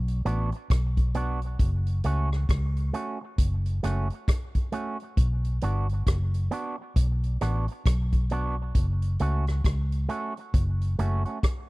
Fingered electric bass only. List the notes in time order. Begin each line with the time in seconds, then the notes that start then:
Already playing: B1
0.25 A1
0.70 B1
1.60 F#1
2.05 C#2
2.49 C#2
3.38 F#1
3.84 F#1
5.18 B1
5.63 G1
6.07 F#1
6.96 B1
7.42 A1
7.86 B1
8.75 F#1
9.20 C#2
9.65 C#2
10.54 F#1
10.99 F#1